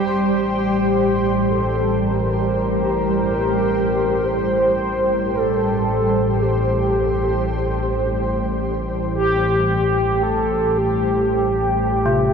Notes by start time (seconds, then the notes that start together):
Already playing: A1 A2 G3 G4 C5
0.44 G4
1.51 A4
2.07 A#4
4.25 C5
5.35 A4
6.42 G4
9.15 G4
10.23 A4
10.78 G4
12.06 C3